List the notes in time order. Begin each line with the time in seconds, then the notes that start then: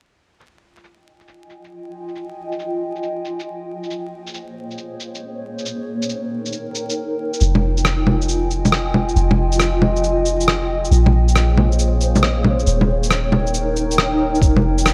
0.40 F4 D#5 G5 G#5, shaker
0.77 shaker
0.84 shaker
1.20 shaker
1.28 shaker
1.50 shaker
1.64 shaker
2.08 shaker
2.15 shaker
2.52 shaker
2.59 shaker
2.96 shaker
3.03 shaker
3.25 shaker
3.39 shaker
3.83 shaker
3.90 A#3 G#4 C5 C#5, shaker
4.27 shaker
4.34 shaker
4.71 shaker
4.78 shaker
5.00 shaker
5.15 shaker
5.58 shaker
5.65 D#4 A#4 G5, shaker
6.02 shaker
6.09 shaker
6.46 shaker
6.52 shaker
6.75 shaker
6.90 shaker
7.33 shaker
7.40 F1 F4 D#5 G#5, shaker
7.55 low bongo
7.77 shaker
7.85 cross-stick, shaker
8.07 low bongo
8.22 shaker
8.29 shaker
8.51 shaker
8.65 low bongo, shaker
8.72 cross-stick
8.94 low bongo
9.09 shaker
9.16 F1, shaker
9.31 low bongo
9.52 shaker
9.60 cross-stick, shaker
9.82 low bongo
9.96 shaker
10.04 shaker
10.26 shaker
10.41 shaker
10.48 cross-stick
10.85 shaker
10.91 A#1 A#3 G#4 C5 C#5, shaker
11.06 low bongo
11.28 shaker
11.36 cross-stick, shaker
11.58 low bongo
11.72 shaker
11.79 shaker
12.01 shaker
12.16 low bongo, shaker
12.23 cross-stick
12.44 low bongo
12.59 shaker
12.67 D#1 D#4 A#4 G5, shaker
12.81 low bongo
13.03 shaker
13.10 cross-stick, shaker
13.32 low bongo
13.47 shaker
13.54 shaker
13.76 shaker
13.91 shaker
13.98 cross-stick
14.35 shaker
14.41 F1 F4 D#5 G5 G#5, kick, shaker
14.56 low bongo
14.78 shaker
14.86 cross-stick, shaker